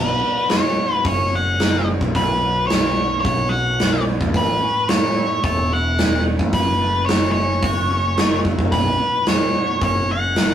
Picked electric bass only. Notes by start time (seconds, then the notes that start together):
Already playing: B1
1.05 F#1
2.01 B1
2.15 B1
3.25 B1
4.21 D2
4.34 A1
5.44 E1
6.40 A1
6.53 F#1
7.63 F#1
8.59 F#1
8.72 B0
9.81 F#1